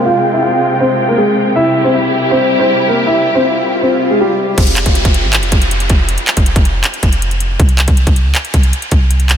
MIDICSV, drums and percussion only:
0, 0, Header, 1, 2, 480
1, 0, Start_track
1, 0, Tempo, 377358
1, 62, Time_signature, 4, 2, 24, 8
1, 11919, End_track
2, 0, Start_track
2, 0, Title_t, "Drums"
2, 5822, Note_on_c, 9, 36, 107
2, 5822, Note_on_c, 9, 49, 95
2, 5823, Note_on_c, 9, 42, 81
2, 5939, Note_off_c, 9, 42, 0
2, 5939, Note_on_c, 9, 42, 55
2, 5949, Note_off_c, 9, 36, 0
2, 5949, Note_off_c, 9, 49, 0
2, 6062, Note_on_c, 9, 39, 97
2, 6064, Note_off_c, 9, 42, 0
2, 6064, Note_on_c, 9, 42, 62
2, 6180, Note_off_c, 9, 42, 0
2, 6180, Note_on_c, 9, 42, 85
2, 6182, Note_on_c, 9, 36, 88
2, 6189, Note_off_c, 9, 39, 0
2, 6300, Note_off_c, 9, 42, 0
2, 6300, Note_on_c, 9, 42, 74
2, 6309, Note_off_c, 9, 36, 0
2, 6423, Note_on_c, 9, 36, 96
2, 6424, Note_off_c, 9, 42, 0
2, 6424, Note_on_c, 9, 42, 63
2, 6543, Note_off_c, 9, 42, 0
2, 6543, Note_on_c, 9, 42, 64
2, 6551, Note_off_c, 9, 36, 0
2, 6670, Note_off_c, 9, 42, 0
2, 6781, Note_on_c, 9, 39, 119
2, 6781, Note_on_c, 9, 42, 76
2, 6905, Note_off_c, 9, 42, 0
2, 6905, Note_on_c, 9, 42, 58
2, 6908, Note_off_c, 9, 39, 0
2, 7021, Note_off_c, 9, 42, 0
2, 7021, Note_on_c, 9, 42, 91
2, 7022, Note_on_c, 9, 36, 94
2, 7144, Note_off_c, 9, 42, 0
2, 7144, Note_on_c, 9, 42, 60
2, 7149, Note_off_c, 9, 36, 0
2, 7266, Note_off_c, 9, 42, 0
2, 7266, Note_on_c, 9, 42, 82
2, 7382, Note_off_c, 9, 42, 0
2, 7382, Note_on_c, 9, 42, 55
2, 7499, Note_off_c, 9, 42, 0
2, 7499, Note_on_c, 9, 42, 75
2, 7502, Note_on_c, 9, 36, 93
2, 7626, Note_off_c, 9, 42, 0
2, 7629, Note_off_c, 9, 36, 0
2, 7742, Note_on_c, 9, 42, 85
2, 7858, Note_off_c, 9, 42, 0
2, 7858, Note_on_c, 9, 42, 57
2, 7982, Note_on_c, 9, 39, 98
2, 7983, Note_off_c, 9, 42, 0
2, 7983, Note_on_c, 9, 42, 62
2, 8100, Note_off_c, 9, 42, 0
2, 8100, Note_on_c, 9, 42, 85
2, 8102, Note_on_c, 9, 36, 90
2, 8109, Note_off_c, 9, 39, 0
2, 8220, Note_off_c, 9, 42, 0
2, 8220, Note_on_c, 9, 42, 73
2, 8229, Note_off_c, 9, 36, 0
2, 8343, Note_on_c, 9, 36, 96
2, 8344, Note_off_c, 9, 42, 0
2, 8344, Note_on_c, 9, 42, 64
2, 8462, Note_off_c, 9, 42, 0
2, 8462, Note_on_c, 9, 42, 62
2, 8470, Note_off_c, 9, 36, 0
2, 8590, Note_off_c, 9, 42, 0
2, 8700, Note_on_c, 9, 39, 122
2, 8700, Note_on_c, 9, 42, 75
2, 8824, Note_off_c, 9, 42, 0
2, 8824, Note_on_c, 9, 42, 60
2, 8827, Note_off_c, 9, 39, 0
2, 8940, Note_off_c, 9, 42, 0
2, 8940, Note_on_c, 9, 42, 91
2, 8941, Note_on_c, 9, 36, 94
2, 9063, Note_off_c, 9, 42, 0
2, 9063, Note_on_c, 9, 42, 61
2, 9068, Note_off_c, 9, 36, 0
2, 9186, Note_off_c, 9, 42, 0
2, 9186, Note_on_c, 9, 42, 80
2, 9302, Note_off_c, 9, 42, 0
2, 9302, Note_on_c, 9, 42, 51
2, 9419, Note_off_c, 9, 42, 0
2, 9419, Note_on_c, 9, 42, 76
2, 9546, Note_off_c, 9, 42, 0
2, 9661, Note_on_c, 9, 36, 109
2, 9662, Note_on_c, 9, 42, 86
2, 9778, Note_off_c, 9, 42, 0
2, 9778, Note_on_c, 9, 42, 55
2, 9789, Note_off_c, 9, 36, 0
2, 9902, Note_on_c, 9, 39, 100
2, 9903, Note_off_c, 9, 42, 0
2, 9903, Note_on_c, 9, 42, 62
2, 10019, Note_off_c, 9, 42, 0
2, 10019, Note_on_c, 9, 42, 82
2, 10022, Note_on_c, 9, 36, 88
2, 10029, Note_off_c, 9, 39, 0
2, 10140, Note_off_c, 9, 42, 0
2, 10140, Note_on_c, 9, 42, 76
2, 10149, Note_off_c, 9, 36, 0
2, 10263, Note_on_c, 9, 36, 96
2, 10264, Note_off_c, 9, 42, 0
2, 10264, Note_on_c, 9, 42, 63
2, 10383, Note_off_c, 9, 42, 0
2, 10383, Note_on_c, 9, 42, 64
2, 10390, Note_off_c, 9, 36, 0
2, 10510, Note_off_c, 9, 42, 0
2, 10620, Note_on_c, 9, 39, 118
2, 10620, Note_on_c, 9, 42, 75
2, 10744, Note_off_c, 9, 42, 0
2, 10744, Note_on_c, 9, 42, 57
2, 10747, Note_off_c, 9, 39, 0
2, 10860, Note_off_c, 9, 42, 0
2, 10860, Note_on_c, 9, 42, 89
2, 10861, Note_on_c, 9, 36, 95
2, 10983, Note_off_c, 9, 42, 0
2, 10983, Note_on_c, 9, 42, 61
2, 10988, Note_off_c, 9, 36, 0
2, 11106, Note_off_c, 9, 42, 0
2, 11106, Note_on_c, 9, 42, 80
2, 11222, Note_off_c, 9, 42, 0
2, 11222, Note_on_c, 9, 42, 54
2, 11339, Note_off_c, 9, 42, 0
2, 11339, Note_on_c, 9, 42, 76
2, 11342, Note_on_c, 9, 36, 90
2, 11467, Note_off_c, 9, 42, 0
2, 11469, Note_off_c, 9, 36, 0
2, 11583, Note_on_c, 9, 42, 84
2, 11699, Note_off_c, 9, 42, 0
2, 11699, Note_on_c, 9, 42, 55
2, 11822, Note_on_c, 9, 39, 95
2, 11824, Note_off_c, 9, 42, 0
2, 11824, Note_on_c, 9, 42, 61
2, 11919, Note_off_c, 9, 39, 0
2, 11919, Note_off_c, 9, 42, 0
2, 11919, End_track
0, 0, End_of_file